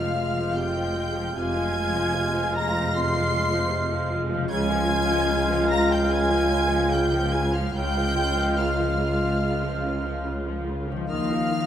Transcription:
Already playing: F1 F2 F3 G#3 F4 C5 F5 F6
0.00 F3
0.18 G#3
0.39 F3
0.57 C3 G5 G6
0.78 F3
0.96 G#3
1.16 F3
1.34 F1 C3 G#3 F4 G#5 G#6
1.38 F2 G#3 F5 G#5
1.55 F3
1.75 G#3
1.96 F3
2.15 C3
2.35 F3
2.55 G#3 A#5 A#6
2.75 F3
2.95 C3 C6 C7
3.15 F3
3.34 G#3
3.52 F3
3.72 C3
3.91 F3
4.11 G#3
4.30 C#3 F3
4.38 F3
4.43 F4
4.48 C#3 F4 C#5
4.52 C#2 G#3 F5 G#5 G#6
4.70 F3
4.88 C#3
5.08 F3
5.29 C#3
5.49 F3
5.69 C#3 A#5 A#6
5.89 F3 G5
5.93 G6
6.10 C#3 G#5 G#6
6.30 F3
6.50 C#3
6.71 F3
6.92 C#3 G5 G6
7.12 F3
7.33 C#3 G#5 G#6
7.53 F3 F5 F6
7.74 C#2 C#3 G#3 F4 F5 G5 G6
7.96 F3
8.17 C#3
8.38 F3
8.57 C#3 F5 F6
8.79 F3
8.99 C#3
9.21 F3
9.43 C#3
9.63 F3
9.85 C#3
10.05 F3
10.27 C#3
10.48 F3
10.68 C#3
10.89 D#3 F3
10.96 F3
11.01 F4
11.05 F5
11.09 D#2 D#3 A#3 D#4 F4 D#5 F5 F6
11.30 F3 D#4
11.50 D#3 F4

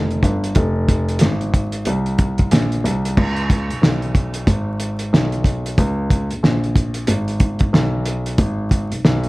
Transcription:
Already playing: F1
0.11 closed hi-hat
0.23 G1, kick, closed hi-hat
0.44 closed hi-hat
0.55 F1, kick, closed hi-hat
0.89 kick, closed hi-hat
1.09 closed hi-hat
1.19 G#1, snare, closed hi-hat
1.41 closed hi-hat
1.54 kick, closed hi-hat
1.72 closed hi-hat
1.85 C2, closed hi-hat
2.06 closed hi-hat
2.19 kick, closed hi-hat
2.38 kick, closed hi-hat
2.51 A#1, snare, closed hi-hat
2.72 closed hi-hat
2.84 C2, closed hi-hat
3.05 closed hi-hat
3.17 C#2, kick, crash
3.36 closed hi-hat
3.50 kick, closed hi-hat
3.69 B1, closed hi-hat
3.82 B1, snare
4.02 closed hi-hat
4.15 kick, closed hi-hat
4.34 closed hi-hat
4.47 G#1, kick, closed hi-hat
4.80 closed hi-hat
4.99 closed hi-hat
5.13 B1, snare
5.32 closed hi-hat
5.44 kick, closed hi-hat
5.66 closed hi-hat
5.78 C#2, kick, closed hi-hat
6.10 kick, closed hi-hat
6.31 A#1, closed hi-hat
6.43 A#1, snare
6.64 closed hi-hat
6.76 kick, closed hi-hat
6.94 closed hi-hat
7.07 G#1, closed hi-hat
7.28 closed hi-hat
7.40 kick, closed hi-hat
7.59 kick, closed hi-hat
7.73 B1, snare
8.06 closed hi-hat
8.26 closed hi-hat
8.38 G#1, kick, closed hi-hat
8.71 kick, closed hi-hat
8.91 B1, closed hi-hat
9.05 B1, snare
9.24 closed hi-hat

